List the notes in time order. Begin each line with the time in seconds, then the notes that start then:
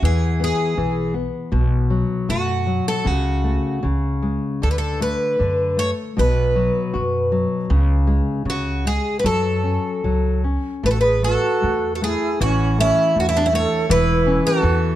0.03 E2 E3 G#4
0.40 B3
0.44 G#4
0.78 B1 E3
1.14 B3
1.52 B1 B2
1.90 F#3
2.29 F#2 A3 F#4
2.67 F#3
2.88 A4
3.05 C#2 C#3 F#4
3.44 A3
3.83 C#2 C#3
4.22 G#3
4.62 D2 D3 A4
4.71 B4
4.78 A4
5.00 A3 B4
5.39 F#2 D3
5.77 A3 C#5
6.17 B1 B2 B4
6.56 F#3
6.94 F#2 F#4
7.32 F#3
7.70 C#2 C#3
8.07 G#3
8.45 C#2 C#3
8.50 F#4
8.85 G#3 G#4
9.19 B4
9.24 F#2 F#3 A4
9.64 C#4
10.04 C#2 F#3
10.44 C#4
10.83 A1 A3 E4 B4
10.90 F#4 A4
11.00 G#4 B4
11.23 A3 F#4 A4
11.62 E2 A3
11.95 F#4 A4
12.02 A3 E4 G#4
12.40 A1 E3 C#4 F#4
12.79 A3 C#4 E4
13.16 E2 A3 D4
13.20 F#4
13.26 C#4 E4
13.35 B3 D4
13.45 C#4 E4
13.53 A3 A4 C#5
13.89 E1 E3 E4 B4
14.27 C#4
14.44 F#4 A4
14.63 E2 E3